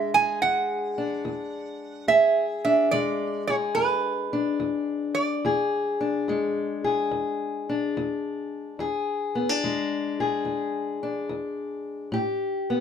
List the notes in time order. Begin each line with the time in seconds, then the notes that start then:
Already playing: E2 G#3 D4 G#4
0.14 G#4 G#5
0.42 E2 F#5
0.98 D4
1.25 E2
2.08 E2 G#4 E5
2.65 D4 E5
2.91 E2 G#3 D5
3.47 G#4 C#5
3.75 E2 B4
4.33 D4
4.60 E2
5.15 D5
5.45 E2 G#4
6.01 D4
6.28 E2 G#3
6.84 G#4
7.11 E2
7.69 D4
7.97 E2
8.79 E2 G#4
9.35 B3
9.49 D4
9.64 E2 G#3
10.20 G#4
10.45 E2
11.03 D4
11.29 E2
12.12 A2 G4
12.70 B3